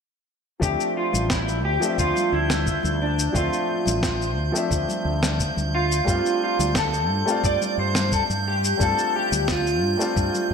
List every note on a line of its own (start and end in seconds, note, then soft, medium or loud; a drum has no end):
0.60 0.75 D2 medium
0.60 1.77 F3 medium
0.60 1.77 A3 medium
0.60 1.78 C4 medium
0.60 1.79 D4 medium
0.60 0.97 G4 medium
0.60 10.54 G6 medium
0.60 kick medium
0.60 shaker medium
0.65 1.79 E5 medium
0.80 shaker soft
0.97 1.28 F4 medium
1.13 1.64 A1 medium
1.13 high conga medium
1.13 shaker medium
1.30 1.64 E4 medium
1.30 kick loud
1.30 snare medium
1.30 shaker medium
1.48 shaker soft
1.64 1.77 D2 medium
1.64 1.99 G4 medium
1.80 3.30 F3 medium
1.80 3.30 A3 medium
1.80 3.31 C4 medium
1.80 3.31 D4 medium
1.80 shaker medium
1.85 3.32 E5 medium
1.98 2.11 D2 medium
1.98 2.34 F4 medium
1.98 kick medium
1.98 shaker soft
2.16 high conga medium
2.16 shaker soft
2.32 2.76 D2 medium
2.32 2.97 E4 medium
2.50 snare medium
2.50 high conga medium
2.50 shaker medium
2.66 kick medium
2.66 shaker soft
2.83 3.27 D2 medium
2.83 high conga medium
2.83 shaker soft
3.02 3.36 D4 medium
3.19 shaker medium
3.32 3.47 D2 medium
3.32 4.49 F3 medium
3.32 4.50 A3 medium
3.32 4.51 C4 medium
3.32 4.51 D4 medium
3.32 5.73 F4 medium
3.32 kick loud
3.32 shaker medium
3.38 4.52 E5 medium
3.53 shaker soft
3.86 4.37 A1 medium
3.86 high conga medium
3.86 shaker medium
4.03 kick loud
4.03 snare medium
4.03 shaker medium
4.22 shaker soft
4.37 4.50 D2 medium
4.52 6.02 F3 medium
4.52 6.03 A3 medium
4.52 6.03 C4 medium
4.52 6.04 D4 medium
4.52 shaker medium
4.57 6.05 E5 medium
4.71 4.84 D2 medium
4.71 kick loud
4.71 shaker soft
4.88 high conga medium
4.88 shaker soft
5.05 5.49 D2 medium
5.22 snare medium
5.22 high conga medium
5.22 shaker medium
5.39 kick medium
5.39 shaker soft
5.56 6.00 D2 medium
5.56 high conga medium
5.56 shaker soft
5.75 6.43 F4 medium
5.92 shaker medium
6.04 6.20 G2 medium
6.04 7.22 G3 medium
6.04 7.22 A3 medium
6.04 7.23 C4 medium
6.04 kick medium
6.04 shaker soft
6.08 7.24 D4 medium
6.08 7.24 F4 medium
6.26 shaker soft
6.44 6.77 F4 medium
6.59 7.10 D2 medium
6.59 high conga medium
6.59 shaker medium
6.75 7.41 A4 medium
6.75 kick loud
6.75 snare medium
6.75 shaker medium
6.94 shaker soft
7.10 7.22 G2 medium
7.25 8.75 G3 medium
7.25 8.76 A3 medium
7.25 8.76 C4 medium
7.25 8.77 D4 medium
7.25 shaker medium
7.30 8.78 F4 medium
7.44 7.57 G2 medium
7.44 7.76 D5 loud
7.44 kick loud
7.44 shaker soft
7.62 high conga medium
7.62 shaker soft
7.78 8.22 G2 medium
7.78 8.13 C5 medium
7.95 snare medium
7.95 high conga medium
7.95 shaker medium
8.12 8.22 A4 medium
8.12 kick loud
8.12 shaker soft
8.30 8.73 G2 medium
8.30 high conga medium
8.30 shaker soft
8.48 8.82 G4 medium
8.64 shaker medium
8.77 8.93 G2 medium
8.77 9.95 G3 medium
8.77 9.95 A3 medium
8.77 9.96 C4 medium
8.77 9.96 D4 medium
8.77 kick loud
8.77 shaker medium
8.82 9.97 F4 medium
8.82 9.13 A4 medium
8.99 shaker soft
9.16 9.47 G4 medium
9.32 9.82 D2 medium
9.32 high conga medium
9.32 shaker medium
9.48 10.54 F4 medium
9.48 kick loud
9.48 snare medium
9.48 shaker medium
9.67 shaker soft
9.82 9.95 G2 medium
9.97 10.54 G3 medium
9.97 10.54 A3 medium
9.97 10.54 C4 medium
9.97 shaker medium
10.01 10.54 D4 medium
10.01 10.54 F4 medium
10.16 10.29 G2 medium
10.16 kick loud
10.16 shaker soft
10.35 high conga medium
10.35 shaker soft
10.51 10.54 G2 medium